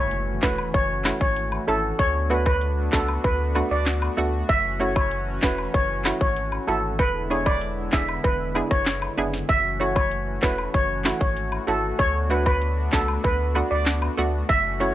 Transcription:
Already playing: F#1 E3 A3 C#4 F#4, impact
0.11 closed hi-hat
0.42 E1 A3 C#4 E4 F#4 B4, kick, snare, clap, cabasa
0.58 high woodblock
0.74 F#1 C#5, kick, closed hi-hat
1.05 A3 C#4 E4 F#4, snare, clap, cabasa, high woodblock
1.21 G#1 C#5, kick
1.36 closed hi-hat
1.52 high woodblock
1.67 G#1 A3 C#4 E4 A4, cabasa
1.99 D2 B3 D4 C#5, kick, closed hi-hat
2.30 A3 B3 D4 F#4 B4, cabasa
2.46 B4, kick, high woodblock
2.61 closed hi-hat
2.92 C#2 A3 B3 D4 F#4 A4, kick, snare, clap, cabasa
3.08 high woodblock
3.24 D2 B4, kick, closed hi-hat
3.55 A3 B3 D4 F#4, cabasa, high woodblock
3.71 D2 D5
3.86 snare, clap, closed hi-hat
4.02 high woodblock
4.17 D2 A3 B3 D4 F#4, cabasa
4.49 F#1 E3 C#4 E5, kick, closed hi-hat
4.80 A3 C#4 E4 F#4 C#5, cabasa
4.96 C#5, kick, high woodblock
5.11 closed hi-hat
5.42 E1 A3 C#4 E4 F#4 B4, kick, snare, clap, cabasa
5.58 high woodblock
5.74 F#1 C#5, kick, closed hi-hat
6.05 A3 C#4 E4 F#4, snare, clap, cabasa, high woodblock
6.21 G#1 C#5, kick
6.37 closed hi-hat
6.52 high woodblock
6.67 G#1 A3 C#4 E4 F#4 A4, cabasa
6.99 E1 D3 G#3 B3 E4 B4, kick, closed hi-hat
7.30 B3 D4 E4 G#4 C#5, cabasa
7.46 D5, kick, high woodblock
7.61 closed hi-hat
7.92 E1 B3 D4 E4 G#4 E5, kick, snare, clap, cabasa
8.08 high woodblock
8.24 E1 B4, kick, closed hi-hat
8.55 B3 D4 E4 G#4, cabasa, high woodblock
8.71 F#1 C#5, kick, cross-stick
8.86 snare, clap, closed hi-hat
9.02 high woodblock
9.18 F#1 B3 D4 E4 G#4, cabasa
9.34 snare
9.49 F#1 E3 A3 C#4 F#4 E5, kick, closed hi-hat
9.80 A3 C#4 E4 F#4 C#5, cabasa
9.96 C#5, kick, high woodblock
10.11 closed hi-hat
10.42 E1 A3 C#4 E4 F#4 B4, kick, snare, clap, cabasa
10.58 high woodblock
10.74 F#1 C#5, kick, closed hi-hat
11.05 A3 C#4 E4 F#4, snare, clap, cabasa, high woodblock
11.21 G#1 C#5, kick
11.37 closed hi-hat
11.52 high woodblock
11.67 G#1 A3 C#4 E4 F#4 A4, cabasa
11.99 D2 B3 D4 C#5, kick, closed hi-hat
12.30 A3 B3 D4 F#4 B4, cabasa
12.46 B4, kick, high woodblock
12.61 closed hi-hat
12.92 C#2 A3 B3 D4 F#4 A4, kick, snare, clap, cabasa
13.08 high woodblock
13.24 D2 B4, kick, closed hi-hat
13.55 A3 B3 D4 F#4, cabasa, high woodblock
13.71 D2 D5
13.86 snare, clap, closed hi-hat
14.02 high woodblock
14.17 D2 A3 B3 D4 F#4, cabasa
14.49 F#1 E3 A3 C#4 F#4 E5, kick, closed hi-hat
14.80 A3 C#4 E4 F#4 C#5, cabasa

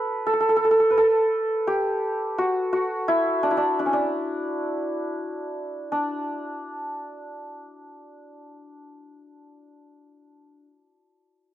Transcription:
Already playing: A4 B4
0.27 A4
0.33 A4
0.40 A4
0.49 A4
0.56 A4
0.65 A4
0.71 A4
0.80 A4
0.90 B4
0.97 A4
1.67 G4
2.38 F#4
2.73 F#4
3.08 E4
3.43 D4
3.51 E4
3.57 D4
3.79 D4
3.86 C#4
3.93 D4
5.92 D4

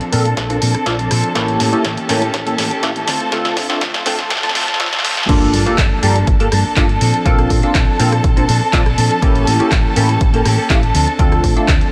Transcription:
Already playing: F3 C4 D4 A4 A5, riser
0.01 closed hi-hat
0.12 A#2 F3 A#3 C4 D4 F4 A4, open hi-hat
0.25 C4 D4 A4, closed hi-hat
0.37 A#1, kick, snare, closed hi-hat
0.49 A#3 C4 D4 F4 A4, closed hi-hat
0.61 A#2 F3 C4 D4 A4, open hi-hat
0.74 C4 D4 A4, muted fingered electric bass stroke, cross-stick, closed hi-hat
0.86 A#1 A#3 C4 D4 F4 A4, kick, snare, closed hi-hat
0.99 F3 C4 D4 A4, closed hi-hat
1.10 A#2 F3 C4 D4 A4, cross-stick, open hi-hat
1.24 closed hi-hat
1.35 A1 E3 A#3 C#4 E4 G4 A4, kick, snare, closed hi-hat
1.48 closed hi-hat
1.59 A2 E3 A#3 C#4 G4, snare, open hi-hat
1.72 A#3 C#4 E4 G4 A4, closed hi-hat
1.84 A1 E3 A#3 C#4 G4, kick, snare, closed hi-hat
1.97 closed hi-hat
2.09 A2 E3 A#3 C#4 E4 G4 A4, snare, open hi-hat
2.21 A#3 C#4 G4, closed hi-hat
2.34 kick, snare, closed hi-hat
2.46 A#3 C#4 E4 G4 A4, closed hi-hat
2.58 A2 E3 A#3 C#4 G4, snare, open hi-hat
2.70 A#3 C#4 G4, muted fingered electric bass stroke, closed hi-hat
2.83 A1 A#3 C#4 E4 G4 A4, kick, snare, closed hi-hat
2.95 E3 A#3 C#4 G4, closed hi-hat
3.07 D2 A3 C4 F4, snare, open hi-hat
3.20 closed hi-hat
3.31 D2 A3 C4 D4 F4 A4, kick, snare, closed hi-hat
3.45 snare, closed hi-hat
3.56 A1 A3 C4 F4, kick, snare, open hi-hat
3.69 A3 C4 D4 F4 A4, snare
3.81 D2 A3 C4 F4, kick, snare, closed hi-hat
3.94 snare, closed hi-hat
4.05 A1 A3 C4 D4 F4 A4, snare, open hi-hat
4.18 C4 F4, snare, closed hi-hat
4.30 D2, kick, snare, closed hi-hat
4.37 snare
4.42 A3 C4 D4 F4 A4, snare, closed hi-hat
4.49 snare
4.54 A1 A3 C4 F4, snare, open hi-hat
4.62 snare
4.67 C4 F4, snare, closed hi-hat
4.74 snare
4.79 D2 A3 C4 D4 F4 A4, kick, snare, closed hi-hat
4.86 snare
4.92 A3 C4 F4, snare, closed hi-hat
4.99 snare
5.03 A1 A3 C4 F4, snare, open hi-hat
5.11 snare
5.17 snare, closed hi-hat
5.23 snare
5.28 G1 F3 A#3 D4 F4 G4 A4 A5, kick, closed hi-hat, crash, impact
5.42 closed hi-hat
5.53 G2 F3 A#3 D4 A4, open hi-hat
5.66 A#3 D4 F4 G4 A4, muted fingered electric bass stroke, closed hi-hat
5.78 G1 F3 A#3 D4 A4, kick, clap, closed hi-hat
6.02 G2 F3 A#3 D4 F4 G4 A4, open hi-hat
6.16 closed hi-hat
6.27 G1, kick, closed hi-hat
6.39 A#3 D4 F4 G4 A4, closed hi-hat
6.51 G2 F3 A#3 D4 A4, cross-stick, open hi-hat
6.64 A#3 D4 A4, muted fingered electric bass stroke
6.76 G1 F3 A#3 D4 F4 G4 A4, kick, clap, closed hi-hat
6.89 A#3 D4 A4, closed hi-hat
7.00 A#2 F3 C4 D4 A4, open hi-hat
7.14 closed hi-hat
7.25 A#1 F3 A#3 C4 D4 F4 A4, kick, closed hi-hat
7.39 cross-stick, closed hi-hat
7.49 A#2 F3 C4 D4 A4, kick, open hi-hat
7.62 A#3 C4 D4 F4 A4, muted fingered electric bass stroke, closed hi-hat
7.74 A#1 F3 C4 D4 A4, kick, clap, closed hi-hat
7.99 A#2 F3 A#3 C4 D4 F4 A4, open hi-hat
8.12 cross-stick, closed hi-hat
8.24 A#1, kick, closed hi-hat
8.36 A#3 C4 D4 F4 A4, closed hi-hat
8.48 A#2 F3 C4 D4 A4, open hi-hat
8.61 C4 D4 A4, muted fingered electric bass stroke
8.73 A#1 F3 A#3 C4 D4 F4 A4, kick, clap, closed hi-hat
8.85 C4 D4 A4, cross-stick, closed hi-hat
8.97 A#2 F3 C4 D4 A4, open hi-hat
9.22 A1 E3 A#3 C#4 E4 G4 A4, kick, closed hi-hat
9.35 closed hi-hat
9.46 A2 E3 A#3 C#4 G4, open hi-hat
9.59 A#3 C#4 E4 G4 A4, muted fingered electric bass stroke, closed hi-hat
9.71 A1 E3 A#3 C#4, kick, clap, closed hi-hat
9.95 A2 E3 A#3 C#4 E4 G4 A4, open hi-hat
10.09 closed hi-hat
10.21 A1, kick, closed hi-hat
10.33 A#3 C#4 E4 G4 A4, closed hi-hat
10.45 A2 E3 A#3 C#4 G4, cross-stick, open hi-hat
10.57 A#3 C#4 G4, muted fingered electric bass stroke
10.69 A1 E3 A#3 C#4 E4 G4 A4, kick, clap, closed hi-hat
10.82 A#3 C#4 G4, closed hi-hat
10.94 D2 F3 C4 D4 A4, open hi-hat
11.07 C4 D4 A4, closed hi-hat
11.19 D2 F3 A3 C4 D4 F4 A4, kick, closed hi-hat
11.32 cross-stick, closed hi-hat
11.43 A1 F3 C4 D4 A4, kick, open hi-hat
11.56 A3 C4 D4 F4 A4, muted fingered electric bass stroke, closed hi-hat
11.68 D2 F3 C4 D4 A4, kick, clap, closed hi-hat
11.81 closed hi-hat

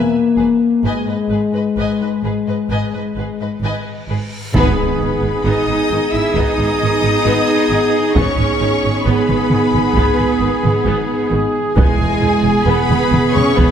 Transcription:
Already playing: A#3 B4 E5 G#5
0.37 E1 E2 G#4 B4
0.84 G#1 G#2 G#3 B4 D#5 G#5, reverse cymbal
1.06 G#2 B4 D#5
1.29 G#1 G#2 G#4 B4
1.53 G#2 B4 D#5
1.76 G#1 G#2 B4 D#5 G#5
2.01 G#2 B4 D#5
2.23 G#1 G#2 G#4 B4
2.47 G#2 B4 D#5
2.69 G#1 G#2 B4 D#5 G#5
2.93 G#2 B4 D#5
3.16 G#1 G#2 G#4 B4
3.40 G#2 B4 D#5
3.62 G#1 G#2 B4 D#5 G#5
4.08 G#1 G#2 G#4 B4
4.53 G#1 G#2 B3 D#4 G#4 B4 B5, taiko, impact
4.77 G#1 G#3
5.00 G#1 D#3
5.22 G#1 G#3
5.45 G#1 B3 D#4 D#5 D#6
5.67 G#1 G#3
5.91 G#1 D#3
6.13 G#1 G#3 E4 E5 E6
6.35 G#1 B3 D#4 D#5 D#6, taiko
6.58 G#1 G#3
6.81 G#1 D#3
7.03 G#1 G#3
7.25 G#1 B3
7.70 G#1 D#3
8.15 G#1 B3 C#4 D#4 G#4 C#5 C#6, taiko
8.37 G#1 G#3
8.60 G#1 D#3
8.84 G#1 G#3
9.05 G#1 B3 B4 B5
9.28 G#1 G#3, taiko mid
9.50 G#1 D#3, taiko mid
9.73 G#1 G#3, taiko mid
9.95 G#1 B3, taiko
10.18 G#1 G#3
10.39 G#1 D#3
10.63 G#1 G#3, taiko mid
10.85 G#1 B3
11.30 G#1 D#3
11.75 E1 G#3 B3 E4 G#4 G#5, taiko
11.98 E1 G#3
12.20 E1 E3
12.43 E1 G#3
12.65 E1 B3 B4 B5
12.89 E1 G#3, taiko mid
13.11 E1 E3, taiko mid
13.34 E1 G#3 C#4 C#5 C#6, taiko mid
13.56 E1 B3 B4 B5, taiko

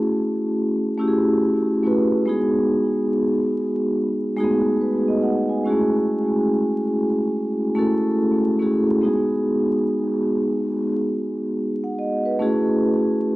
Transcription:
Already playing: A3 C#4 E4 F#4 G#4
0.98 A3 C#4 E4 F#4 G4
1.08 G#4
1.83 A3 C#4 E4 F#4 B4
2.26 G#3 B3 D#4 F#4 G#4
4.36 G#3 A3 D#4 F#4 G#4
4.44 B3
4.81 B4
5.08 D#5
5.23 F#5
5.50 G#5
5.65 G#3 C#4 E4 F#4 G#4
5.71 A3
7.75 A3 C#4 E4 F#4 A4
8.59 A3 C#4 E4 F#4 G#4
9.01 G#3 B3 D#4 F#4 G#4
11.84 F#5
11.98 D#5
12.25 B4
12.39 A3 C#4 E4 F#4 G#4

